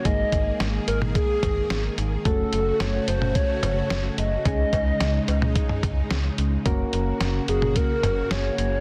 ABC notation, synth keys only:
X:1
M:4/4
L:1/8
Q:1/4=109
K:Gblyd
V:1 name="Synth keys"
[A,B,EA]8 | [=A,DG=A]8 | [A,DEA]8 | [B,DGB]6 [B,DGA]2 |]